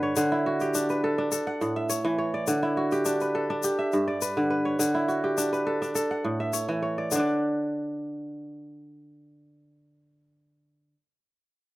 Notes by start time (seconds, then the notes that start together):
Already playing: G2 D3 G4 B4
0.03 C#5
0.16 D3, shaker
0.32 E4
0.46 F#4
0.60 G4, shaker
0.74 D4, shaker
0.89 B4, shaker
1.04 A4
1.18 D4
1.32 A4, shaker
1.47 F#5
1.61 A2, shaker
1.76 E5
1.89 C#5, shaker
2.05 E3
2.18 C#5
2.34 D5
2.47 D3, shaker
2.63 E4
2.77 F#4
2.91 G4, shaker
3.05 D4, shaker
3.20 B4, shaker
3.35 A4
3.50 D4
3.63 G4, shaker
3.79 E5
3.92 G2, shaker
4.08 D5
4.22 B4, shaker
4.37 D3
4.50 B4
4.65 C#5
4.79 D3, shaker
4.95 E4
5.08 F#4, shaker
5.24 G4
5.38 D4, shaker
5.53 B4, shaker
5.67 A4
5.82 D4, shaker
5.95 A4, shaker
6.11 F#5
6.24 A2
6.40 E5
6.53 C#5, shaker
6.69 E3
6.82 C#5
6.98 D5
7.11 D3, shaker
7.15 D4
7.19 D5